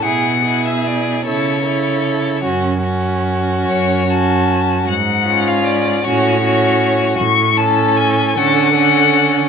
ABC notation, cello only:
X:1
M:6/8
L:1/8
Q:3/8=51
K:A
V:1 name="Cello" clef=bass
B,,3 C,3 | F,,3 F,,3 | G,,3 A,,3 | A,,3 D,3 |]